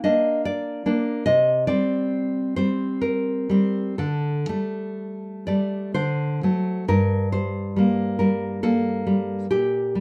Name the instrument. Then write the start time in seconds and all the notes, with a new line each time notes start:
nylon-string guitar
0.04 A#3 D4 D#5
0.45 D5
0.86 A#3 D4
1.26 C3 D#5
1.67 G3 C4 D5
2.56 G3 C4 C5
3.02 A#4
3.49 G3 C4
3.98 D3 A4
4.49 G3 A3
5.47 G3 A3 D5
5.94 D3 C5
6.43 F#3 A3
6.88 G2 A#4
7.32 G3 C5
7.76 G3 A#3
8.19 G3 A#4
8.63 G3 A#3 A4
9.07 G3
9.51 A#2 G4
9.95 G3